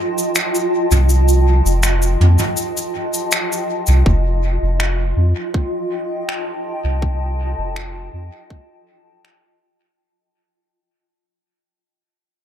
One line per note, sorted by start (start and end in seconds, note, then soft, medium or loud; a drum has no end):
0.00 4.04 F4 medium
0.00 4.06 D#5 medium
0.00 4.05 G5 medium
0.00 4.05 A5 medium
0.18 cabasa medium
0.35 finger snap medium
0.35 cabasa medium
0.55 cabasa soft
0.91 1.62 C2 medium
0.91 mid tom medium
0.91 cabasa medium
1.09 cabasa medium
1.28 cabasa soft
1.65 2.17 F1 loud
1.65 cabasa medium
1.83 finger snap medium
1.83 cabasa medium
2.02 cabasa soft
2.20 2.37 F2 medium
2.20 mid tom medium
2.39 mid tom medium
2.39 cabasa medium
2.57 cabasa medium
2.77 cabasa medium
3.14 cabasa medium
3.32 finger snap medium
3.32 cabasa medium
3.52 cabasa medium
3.87 4.04 C2 medium
3.87 cabasa medium
4.05 4.58 F1 loud
4.05 9.98 F4 medium
4.05 kick loud
4.49 9.98 D#5 medium
4.62 5.14 F1 medium
4.80 finger snap medium
5.16 5.34 F2 medium
5.24 9.99 G5 medium
5.54 kick loud
5.78 9.99 A5 medium
6.29 finger snap medium
6.84 7.55 C2 medium
7.02 kick loud
7.58 8.10 F1 medium
7.76 finger snap medium
8.13 8.30 F2 medium
8.50 kick medium
9.25 finger snap medium